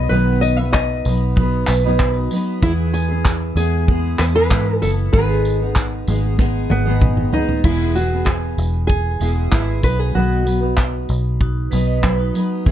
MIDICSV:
0, 0, Header, 1, 6, 480
1, 0, Start_track
1, 0, Key_signature, 4, "major"
1, 0, Tempo, 626828
1, 90, Time_signature, 4, 2, 24, 8
1, 9737, End_track
2, 0, Start_track
2, 0, Title_t, "Vibraphone"
2, 0, Program_c, 0, 11
2, 1041, Note_on_c, 0, 66, 75
2, 1047, Note_on_c, 0, 63, 64
2, 1273, Note_off_c, 0, 66, 0
2, 1274, Note_on_c, 0, 71, 81
2, 1276, Note_off_c, 0, 63, 0
2, 1396, Note_off_c, 0, 71, 0
2, 1410, Note_on_c, 0, 71, 66
2, 1410, Note_on_c, 0, 75, 87
2, 1508, Note_off_c, 0, 71, 0
2, 1518, Note_on_c, 0, 71, 89
2, 1524, Note_off_c, 0, 75, 0
2, 1637, Note_off_c, 0, 71, 0
2, 1639, Note_on_c, 0, 66, 66
2, 1650, Note_on_c, 0, 63, 64
2, 1986, Note_off_c, 0, 66, 0
2, 1992, Note_off_c, 0, 63, 0
2, 8735, Note_on_c, 0, 66, 74
2, 8740, Note_on_c, 0, 63, 60
2, 8960, Note_off_c, 0, 66, 0
2, 8963, Note_off_c, 0, 63, 0
2, 8968, Note_on_c, 0, 71, 74
2, 9082, Note_off_c, 0, 71, 0
2, 9090, Note_on_c, 0, 75, 80
2, 9096, Note_on_c, 0, 71, 72
2, 9198, Note_off_c, 0, 71, 0
2, 9203, Note_off_c, 0, 75, 0
2, 9207, Note_on_c, 0, 71, 81
2, 9322, Note_off_c, 0, 71, 0
2, 9337, Note_on_c, 0, 66, 64
2, 9340, Note_on_c, 0, 63, 56
2, 9675, Note_off_c, 0, 66, 0
2, 9676, Note_off_c, 0, 63, 0
2, 9737, End_track
3, 0, Start_track
3, 0, Title_t, "Nylon-string guitar"
3, 0, Program_c, 1, 24
3, 0, Note_on_c, 1, 75, 95
3, 71, Note_on_c, 1, 71, 98
3, 92, Note_off_c, 1, 75, 0
3, 303, Note_off_c, 1, 71, 0
3, 316, Note_on_c, 1, 75, 84
3, 433, Note_off_c, 1, 75, 0
3, 433, Note_on_c, 1, 76, 92
3, 553, Note_off_c, 1, 76, 0
3, 556, Note_on_c, 1, 75, 86
3, 1012, Note_off_c, 1, 75, 0
3, 2014, Note_on_c, 1, 64, 98
3, 2078, Note_off_c, 1, 64, 0
3, 2248, Note_on_c, 1, 68, 91
3, 2723, Note_off_c, 1, 68, 0
3, 2732, Note_on_c, 1, 68, 101
3, 3208, Note_on_c, 1, 71, 96
3, 3225, Note_off_c, 1, 68, 0
3, 3246, Note_off_c, 1, 71, 0
3, 3335, Note_on_c, 1, 71, 102
3, 3687, Note_off_c, 1, 71, 0
3, 3690, Note_on_c, 1, 69, 95
3, 3755, Note_off_c, 1, 69, 0
3, 3926, Note_on_c, 1, 71, 100
3, 5140, Note_on_c, 1, 59, 83
3, 5576, Note_off_c, 1, 71, 0
3, 5616, Note_on_c, 1, 63, 78
3, 5628, Note_off_c, 1, 59, 0
3, 5858, Note_on_c, 1, 64, 87
3, 5859, Note_off_c, 1, 63, 0
3, 6091, Note_on_c, 1, 66, 76
3, 6100, Note_off_c, 1, 64, 0
3, 6317, Note_on_c, 1, 68, 80
3, 6337, Note_off_c, 1, 66, 0
3, 6785, Note_off_c, 1, 68, 0
3, 6794, Note_on_c, 1, 68, 95
3, 7251, Note_off_c, 1, 68, 0
3, 7286, Note_on_c, 1, 64, 84
3, 7510, Note_off_c, 1, 64, 0
3, 7535, Note_on_c, 1, 71, 89
3, 7653, Note_off_c, 1, 71, 0
3, 7653, Note_on_c, 1, 68, 79
3, 7771, Note_off_c, 1, 68, 0
3, 7772, Note_on_c, 1, 66, 92
3, 8220, Note_off_c, 1, 66, 0
3, 9737, End_track
4, 0, Start_track
4, 0, Title_t, "Steel-string acoustic guitar"
4, 0, Program_c, 2, 25
4, 0, Note_on_c, 2, 54, 61
4, 0, Note_on_c, 2, 59, 66
4, 0, Note_on_c, 2, 63, 65
4, 0, Note_on_c, 2, 71, 70
4, 81, Note_off_c, 2, 54, 0
4, 84, Note_off_c, 2, 59, 0
4, 84, Note_on_c, 2, 47, 85
4, 87, Note_off_c, 2, 63, 0
4, 87, Note_on_c, 2, 51, 81
4, 91, Note_off_c, 2, 71, 0
4, 91, Note_on_c, 2, 54, 75
4, 93, Note_on_c, 2, 59, 89
4, 96, Note_on_c, 2, 63, 83
4, 100, Note_on_c, 2, 71, 81
4, 446, Note_off_c, 2, 71, 0
4, 447, Note_off_c, 2, 47, 0
4, 448, Note_off_c, 2, 51, 0
4, 450, Note_off_c, 2, 54, 0
4, 451, Note_off_c, 2, 59, 0
4, 453, Note_off_c, 2, 63, 0
4, 455, Note_on_c, 2, 71, 51
4, 467, Note_on_c, 2, 63, 53
4, 471, Note_on_c, 2, 59, 49
4, 481, Note_on_c, 2, 54, 46
4, 798, Note_off_c, 2, 54, 0
4, 806, Note_off_c, 2, 59, 0
4, 807, Note_on_c, 2, 54, 52
4, 813, Note_off_c, 2, 71, 0
4, 815, Note_on_c, 2, 59, 58
4, 819, Note_off_c, 2, 63, 0
4, 828, Note_on_c, 2, 63, 62
4, 830, Note_on_c, 2, 71, 62
4, 1035, Note_off_c, 2, 54, 0
4, 1044, Note_on_c, 2, 54, 67
4, 1052, Note_off_c, 2, 59, 0
4, 1059, Note_off_c, 2, 63, 0
4, 1060, Note_off_c, 2, 71, 0
4, 1062, Note_on_c, 2, 59, 72
4, 1067, Note_on_c, 2, 63, 74
4, 1073, Note_on_c, 2, 71, 69
4, 1407, Note_off_c, 2, 54, 0
4, 1407, Note_off_c, 2, 71, 0
4, 1414, Note_off_c, 2, 63, 0
4, 1416, Note_off_c, 2, 59, 0
4, 1416, Note_on_c, 2, 71, 75
4, 1423, Note_on_c, 2, 59, 74
4, 1423, Note_on_c, 2, 63, 83
4, 1425, Note_on_c, 2, 54, 75
4, 1431, Note_on_c, 2, 47, 64
4, 1432, Note_on_c, 2, 51, 72
4, 1754, Note_off_c, 2, 54, 0
4, 1763, Note_on_c, 2, 54, 74
4, 1767, Note_off_c, 2, 59, 0
4, 1772, Note_off_c, 2, 63, 0
4, 1773, Note_off_c, 2, 71, 0
4, 1776, Note_on_c, 2, 59, 73
4, 1780, Note_off_c, 2, 47, 0
4, 1781, Note_off_c, 2, 51, 0
4, 1782, Note_on_c, 2, 63, 73
4, 1790, Note_on_c, 2, 71, 76
4, 2000, Note_off_c, 2, 59, 0
4, 2002, Note_on_c, 2, 52, 81
4, 2006, Note_off_c, 2, 54, 0
4, 2009, Note_on_c, 2, 59, 85
4, 2010, Note_on_c, 2, 56, 88
4, 2015, Note_off_c, 2, 63, 0
4, 2016, Note_off_c, 2, 71, 0
4, 2018, Note_on_c, 2, 64, 88
4, 2020, Note_on_c, 2, 68, 83
4, 2354, Note_off_c, 2, 68, 0
4, 2363, Note_on_c, 2, 68, 59
4, 2366, Note_off_c, 2, 52, 0
4, 2369, Note_off_c, 2, 59, 0
4, 2370, Note_off_c, 2, 56, 0
4, 2370, Note_off_c, 2, 64, 0
4, 2380, Note_on_c, 2, 64, 51
4, 2391, Note_on_c, 2, 59, 43
4, 2724, Note_on_c, 2, 56, 57
4, 2725, Note_off_c, 2, 59, 0
4, 2726, Note_off_c, 2, 68, 0
4, 2734, Note_on_c, 2, 59, 57
4, 2735, Note_off_c, 2, 64, 0
4, 2744, Note_on_c, 2, 64, 61
4, 2751, Note_on_c, 2, 68, 60
4, 2956, Note_off_c, 2, 56, 0
4, 2965, Note_on_c, 2, 56, 62
4, 2968, Note_off_c, 2, 59, 0
4, 2974, Note_off_c, 2, 64, 0
4, 2977, Note_on_c, 2, 59, 67
4, 2980, Note_off_c, 2, 68, 0
4, 2983, Note_on_c, 2, 64, 69
4, 2991, Note_on_c, 2, 68, 71
4, 3318, Note_off_c, 2, 68, 0
4, 3322, Note_off_c, 2, 64, 0
4, 3327, Note_off_c, 2, 56, 0
4, 3327, Note_off_c, 2, 59, 0
4, 3327, Note_on_c, 2, 68, 75
4, 3331, Note_on_c, 2, 64, 74
4, 3336, Note_on_c, 2, 59, 70
4, 3342, Note_on_c, 2, 56, 68
4, 3344, Note_on_c, 2, 52, 61
4, 3685, Note_off_c, 2, 59, 0
4, 3688, Note_off_c, 2, 68, 0
4, 3690, Note_off_c, 2, 64, 0
4, 3694, Note_on_c, 2, 59, 65
4, 3695, Note_off_c, 2, 56, 0
4, 3696, Note_off_c, 2, 52, 0
4, 3704, Note_on_c, 2, 64, 61
4, 3932, Note_off_c, 2, 59, 0
4, 3932, Note_on_c, 2, 44, 69
4, 3935, Note_on_c, 2, 51, 75
4, 3936, Note_off_c, 2, 64, 0
4, 3941, Note_on_c, 2, 56, 87
4, 3946, Note_on_c, 2, 63, 83
4, 3947, Note_on_c, 2, 59, 83
4, 3948, Note_on_c, 2, 68, 85
4, 4281, Note_off_c, 2, 68, 0
4, 4290, Note_on_c, 2, 68, 57
4, 4291, Note_off_c, 2, 44, 0
4, 4292, Note_off_c, 2, 51, 0
4, 4292, Note_off_c, 2, 63, 0
4, 4295, Note_off_c, 2, 56, 0
4, 4298, Note_off_c, 2, 59, 0
4, 4301, Note_on_c, 2, 63, 52
4, 4308, Note_on_c, 2, 59, 53
4, 4314, Note_on_c, 2, 56, 42
4, 4640, Note_off_c, 2, 56, 0
4, 4649, Note_off_c, 2, 68, 0
4, 4649, Note_on_c, 2, 56, 69
4, 4652, Note_off_c, 2, 59, 0
4, 4655, Note_off_c, 2, 63, 0
4, 4661, Note_on_c, 2, 59, 75
4, 4670, Note_on_c, 2, 63, 69
4, 4674, Note_on_c, 2, 68, 67
4, 4864, Note_off_c, 2, 56, 0
4, 4874, Note_on_c, 2, 56, 67
4, 4880, Note_off_c, 2, 59, 0
4, 4885, Note_off_c, 2, 63, 0
4, 4889, Note_on_c, 2, 59, 69
4, 4890, Note_off_c, 2, 68, 0
4, 4894, Note_on_c, 2, 63, 76
4, 4899, Note_on_c, 2, 68, 71
4, 5239, Note_off_c, 2, 68, 0
4, 5240, Note_off_c, 2, 63, 0
4, 5241, Note_off_c, 2, 56, 0
4, 5246, Note_off_c, 2, 59, 0
4, 5248, Note_on_c, 2, 68, 78
4, 5250, Note_on_c, 2, 63, 80
4, 5256, Note_on_c, 2, 59, 75
4, 5259, Note_on_c, 2, 51, 75
4, 5259, Note_on_c, 2, 56, 71
4, 5266, Note_on_c, 2, 44, 68
4, 5596, Note_off_c, 2, 56, 0
4, 5605, Note_on_c, 2, 56, 63
4, 5606, Note_off_c, 2, 59, 0
4, 5608, Note_off_c, 2, 68, 0
4, 5609, Note_off_c, 2, 63, 0
4, 5614, Note_off_c, 2, 51, 0
4, 5615, Note_on_c, 2, 59, 80
4, 5617, Note_off_c, 2, 44, 0
4, 5623, Note_on_c, 2, 63, 71
4, 5628, Note_on_c, 2, 68, 66
4, 5847, Note_off_c, 2, 56, 0
4, 5850, Note_on_c, 2, 52, 85
4, 5852, Note_off_c, 2, 59, 0
4, 5856, Note_off_c, 2, 63, 0
4, 5856, Note_on_c, 2, 56, 71
4, 5858, Note_off_c, 2, 68, 0
4, 5863, Note_on_c, 2, 59, 76
4, 5867, Note_on_c, 2, 68, 83
4, 5868, Note_on_c, 2, 64, 82
4, 6081, Note_off_c, 2, 56, 0
4, 6089, Note_off_c, 2, 52, 0
4, 6090, Note_on_c, 2, 56, 57
4, 6092, Note_off_c, 2, 59, 0
4, 6098, Note_off_c, 2, 64, 0
4, 6098, Note_off_c, 2, 68, 0
4, 6102, Note_on_c, 2, 59, 55
4, 6108, Note_on_c, 2, 64, 65
4, 6115, Note_on_c, 2, 68, 68
4, 6196, Note_off_c, 2, 68, 0
4, 6205, Note_on_c, 2, 68, 51
4, 6209, Note_off_c, 2, 56, 0
4, 6210, Note_off_c, 2, 64, 0
4, 6215, Note_off_c, 2, 59, 0
4, 6220, Note_on_c, 2, 64, 43
4, 6229, Note_on_c, 2, 59, 49
4, 7039, Note_on_c, 2, 56, 60
4, 7046, Note_off_c, 2, 59, 0
4, 7047, Note_off_c, 2, 68, 0
4, 7049, Note_on_c, 2, 59, 62
4, 7050, Note_off_c, 2, 64, 0
4, 7059, Note_on_c, 2, 64, 62
4, 7064, Note_on_c, 2, 68, 70
4, 7271, Note_off_c, 2, 56, 0
4, 7280, Note_off_c, 2, 59, 0
4, 7280, Note_on_c, 2, 56, 57
4, 7289, Note_on_c, 2, 59, 68
4, 7291, Note_off_c, 2, 64, 0
4, 7296, Note_off_c, 2, 68, 0
4, 7300, Note_on_c, 2, 64, 65
4, 7308, Note_on_c, 2, 68, 69
4, 7524, Note_off_c, 2, 56, 0
4, 7529, Note_off_c, 2, 59, 0
4, 7529, Note_on_c, 2, 54, 56
4, 7534, Note_off_c, 2, 64, 0
4, 7538, Note_off_c, 2, 68, 0
4, 7540, Note_on_c, 2, 59, 60
4, 7548, Note_on_c, 2, 63, 55
4, 7553, Note_on_c, 2, 71, 59
4, 7762, Note_off_c, 2, 54, 0
4, 7768, Note_on_c, 2, 47, 74
4, 7770, Note_off_c, 2, 63, 0
4, 7771, Note_off_c, 2, 59, 0
4, 7771, Note_on_c, 2, 51, 73
4, 7771, Note_on_c, 2, 54, 81
4, 7778, Note_off_c, 2, 71, 0
4, 7779, Note_on_c, 2, 63, 76
4, 7780, Note_on_c, 2, 59, 85
4, 7787, Note_on_c, 2, 71, 86
4, 7988, Note_off_c, 2, 54, 0
4, 7995, Note_off_c, 2, 59, 0
4, 7997, Note_on_c, 2, 54, 56
4, 8003, Note_off_c, 2, 63, 0
4, 8004, Note_on_c, 2, 59, 64
4, 8008, Note_off_c, 2, 47, 0
4, 8010, Note_off_c, 2, 51, 0
4, 8010, Note_off_c, 2, 71, 0
4, 8012, Note_on_c, 2, 63, 60
4, 8020, Note_on_c, 2, 71, 68
4, 8109, Note_off_c, 2, 71, 0
4, 8118, Note_off_c, 2, 63, 0
4, 8118, Note_on_c, 2, 71, 54
4, 8123, Note_off_c, 2, 54, 0
4, 8126, Note_off_c, 2, 59, 0
4, 8127, Note_on_c, 2, 63, 46
4, 8134, Note_on_c, 2, 59, 44
4, 8143, Note_on_c, 2, 54, 45
4, 8956, Note_off_c, 2, 54, 0
4, 8966, Note_on_c, 2, 54, 64
4, 8968, Note_off_c, 2, 63, 0
4, 8969, Note_off_c, 2, 59, 0
4, 8972, Note_on_c, 2, 59, 66
4, 8983, Note_on_c, 2, 63, 69
4, 8990, Note_off_c, 2, 71, 0
4, 8993, Note_on_c, 2, 71, 75
4, 9189, Note_off_c, 2, 54, 0
4, 9198, Note_on_c, 2, 54, 68
4, 9201, Note_off_c, 2, 59, 0
4, 9210, Note_off_c, 2, 63, 0
4, 9210, Note_on_c, 2, 59, 67
4, 9220, Note_on_c, 2, 63, 70
4, 9221, Note_off_c, 2, 71, 0
4, 9229, Note_on_c, 2, 71, 81
4, 9438, Note_off_c, 2, 54, 0
4, 9447, Note_on_c, 2, 54, 68
4, 9449, Note_off_c, 2, 59, 0
4, 9454, Note_off_c, 2, 63, 0
4, 9458, Note_on_c, 2, 59, 72
4, 9459, Note_off_c, 2, 71, 0
4, 9466, Note_on_c, 2, 63, 76
4, 9473, Note_on_c, 2, 71, 78
4, 9688, Note_off_c, 2, 54, 0
4, 9691, Note_off_c, 2, 59, 0
4, 9692, Note_on_c, 2, 52, 80
4, 9698, Note_off_c, 2, 63, 0
4, 9699, Note_on_c, 2, 56, 86
4, 9700, Note_on_c, 2, 59, 87
4, 9701, Note_off_c, 2, 71, 0
4, 9704, Note_on_c, 2, 64, 89
4, 9710, Note_on_c, 2, 68, 102
4, 9737, Note_off_c, 2, 52, 0
4, 9737, Note_off_c, 2, 56, 0
4, 9737, Note_off_c, 2, 59, 0
4, 9737, Note_off_c, 2, 64, 0
4, 9737, Note_off_c, 2, 68, 0
4, 9737, End_track
5, 0, Start_track
5, 0, Title_t, "Fingered electric bass"
5, 0, Program_c, 3, 33
5, 84, Note_on_c, 3, 35, 107
5, 776, Note_off_c, 3, 35, 0
5, 809, Note_on_c, 3, 35, 104
5, 1259, Note_off_c, 3, 35, 0
5, 1288, Note_on_c, 3, 35, 104
5, 1738, Note_off_c, 3, 35, 0
5, 2011, Note_on_c, 3, 40, 114
5, 2700, Note_off_c, 3, 40, 0
5, 2723, Note_on_c, 3, 40, 98
5, 3175, Note_off_c, 3, 40, 0
5, 3211, Note_on_c, 3, 40, 114
5, 3431, Note_off_c, 3, 40, 0
5, 3453, Note_on_c, 3, 44, 103
5, 3672, Note_off_c, 3, 44, 0
5, 3697, Note_on_c, 3, 30, 88
5, 3914, Note_off_c, 3, 30, 0
5, 3934, Note_on_c, 3, 32, 101
5, 4621, Note_off_c, 3, 32, 0
5, 4655, Note_on_c, 3, 32, 109
5, 5101, Note_off_c, 3, 32, 0
5, 5136, Note_on_c, 3, 32, 107
5, 5582, Note_off_c, 3, 32, 0
5, 5855, Note_on_c, 3, 28, 104
5, 6541, Note_off_c, 3, 28, 0
5, 6570, Note_on_c, 3, 28, 102
5, 7018, Note_off_c, 3, 28, 0
5, 7052, Note_on_c, 3, 28, 88
5, 7271, Note_off_c, 3, 28, 0
5, 7291, Note_on_c, 3, 32, 80
5, 7511, Note_off_c, 3, 32, 0
5, 7532, Note_on_c, 3, 35, 101
5, 7751, Note_off_c, 3, 35, 0
5, 7774, Note_on_c, 3, 35, 102
5, 8461, Note_off_c, 3, 35, 0
5, 8496, Note_on_c, 3, 35, 105
5, 8942, Note_off_c, 3, 35, 0
5, 8980, Note_on_c, 3, 35, 103
5, 9424, Note_off_c, 3, 35, 0
5, 9698, Note_on_c, 3, 40, 103
5, 9737, Note_off_c, 3, 40, 0
5, 9737, End_track
6, 0, Start_track
6, 0, Title_t, "Drums"
6, 327, Note_on_c, 9, 54, 61
6, 404, Note_off_c, 9, 54, 0
6, 566, Note_on_c, 9, 39, 113
6, 568, Note_on_c, 9, 36, 103
6, 642, Note_off_c, 9, 39, 0
6, 644, Note_off_c, 9, 36, 0
6, 804, Note_on_c, 9, 54, 62
6, 881, Note_off_c, 9, 54, 0
6, 1048, Note_on_c, 9, 36, 110
6, 1125, Note_off_c, 9, 36, 0
6, 1280, Note_on_c, 9, 39, 96
6, 1282, Note_on_c, 9, 54, 80
6, 1356, Note_off_c, 9, 39, 0
6, 1359, Note_off_c, 9, 54, 0
6, 1529, Note_on_c, 9, 39, 120
6, 1530, Note_on_c, 9, 36, 110
6, 1606, Note_off_c, 9, 39, 0
6, 1607, Note_off_c, 9, 36, 0
6, 1768, Note_on_c, 9, 54, 70
6, 1845, Note_off_c, 9, 54, 0
6, 2011, Note_on_c, 9, 36, 110
6, 2087, Note_off_c, 9, 36, 0
6, 2252, Note_on_c, 9, 54, 62
6, 2329, Note_off_c, 9, 54, 0
6, 2491, Note_on_c, 9, 36, 104
6, 2491, Note_on_c, 9, 39, 114
6, 2567, Note_off_c, 9, 36, 0
6, 2567, Note_off_c, 9, 39, 0
6, 2730, Note_on_c, 9, 54, 66
6, 2806, Note_off_c, 9, 54, 0
6, 2973, Note_on_c, 9, 36, 110
6, 3050, Note_off_c, 9, 36, 0
6, 3208, Note_on_c, 9, 39, 95
6, 3211, Note_on_c, 9, 54, 71
6, 3285, Note_off_c, 9, 39, 0
6, 3288, Note_off_c, 9, 54, 0
6, 3454, Note_on_c, 9, 36, 118
6, 3455, Note_on_c, 9, 39, 118
6, 3530, Note_off_c, 9, 36, 0
6, 3531, Note_off_c, 9, 39, 0
6, 3694, Note_on_c, 9, 54, 64
6, 3771, Note_off_c, 9, 54, 0
6, 3932, Note_on_c, 9, 36, 109
6, 4009, Note_off_c, 9, 36, 0
6, 4174, Note_on_c, 9, 54, 63
6, 4251, Note_off_c, 9, 54, 0
6, 4407, Note_on_c, 9, 39, 102
6, 4411, Note_on_c, 9, 36, 102
6, 4484, Note_off_c, 9, 39, 0
6, 4488, Note_off_c, 9, 36, 0
6, 4652, Note_on_c, 9, 54, 64
6, 4728, Note_off_c, 9, 54, 0
6, 4892, Note_on_c, 9, 38, 63
6, 4893, Note_on_c, 9, 36, 110
6, 4969, Note_off_c, 9, 36, 0
6, 4969, Note_off_c, 9, 38, 0
6, 5130, Note_on_c, 9, 48, 83
6, 5206, Note_off_c, 9, 48, 0
6, 5369, Note_on_c, 9, 47, 89
6, 5372, Note_on_c, 9, 36, 119
6, 5446, Note_off_c, 9, 47, 0
6, 5449, Note_off_c, 9, 36, 0
6, 5490, Note_on_c, 9, 45, 68
6, 5567, Note_off_c, 9, 45, 0
6, 5611, Note_on_c, 9, 43, 92
6, 5687, Note_off_c, 9, 43, 0
6, 5733, Note_on_c, 9, 43, 89
6, 5810, Note_off_c, 9, 43, 0
6, 5850, Note_on_c, 9, 49, 96
6, 5851, Note_on_c, 9, 36, 113
6, 5927, Note_off_c, 9, 49, 0
6, 5928, Note_off_c, 9, 36, 0
6, 6090, Note_on_c, 9, 54, 59
6, 6167, Note_off_c, 9, 54, 0
6, 6330, Note_on_c, 9, 39, 99
6, 6331, Note_on_c, 9, 36, 90
6, 6407, Note_off_c, 9, 36, 0
6, 6407, Note_off_c, 9, 39, 0
6, 6573, Note_on_c, 9, 54, 65
6, 6649, Note_off_c, 9, 54, 0
6, 6812, Note_on_c, 9, 36, 108
6, 6888, Note_off_c, 9, 36, 0
6, 7050, Note_on_c, 9, 54, 70
6, 7127, Note_off_c, 9, 54, 0
6, 7292, Note_on_c, 9, 36, 115
6, 7292, Note_on_c, 9, 39, 110
6, 7369, Note_off_c, 9, 36, 0
6, 7369, Note_off_c, 9, 39, 0
6, 7530, Note_on_c, 9, 54, 66
6, 7531, Note_on_c, 9, 36, 94
6, 7607, Note_off_c, 9, 36, 0
6, 7607, Note_off_c, 9, 54, 0
6, 8016, Note_on_c, 9, 54, 63
6, 8092, Note_off_c, 9, 54, 0
6, 8249, Note_on_c, 9, 39, 94
6, 8252, Note_on_c, 9, 36, 87
6, 8326, Note_off_c, 9, 39, 0
6, 8329, Note_off_c, 9, 36, 0
6, 8492, Note_on_c, 9, 54, 59
6, 8568, Note_off_c, 9, 54, 0
6, 8735, Note_on_c, 9, 36, 104
6, 8811, Note_off_c, 9, 36, 0
6, 8973, Note_on_c, 9, 54, 74
6, 9049, Note_off_c, 9, 54, 0
6, 9217, Note_on_c, 9, 36, 104
6, 9217, Note_on_c, 9, 39, 108
6, 9294, Note_off_c, 9, 36, 0
6, 9294, Note_off_c, 9, 39, 0
6, 9458, Note_on_c, 9, 54, 69
6, 9534, Note_off_c, 9, 54, 0
6, 9697, Note_on_c, 9, 36, 118
6, 9737, Note_off_c, 9, 36, 0
6, 9737, End_track
0, 0, End_of_file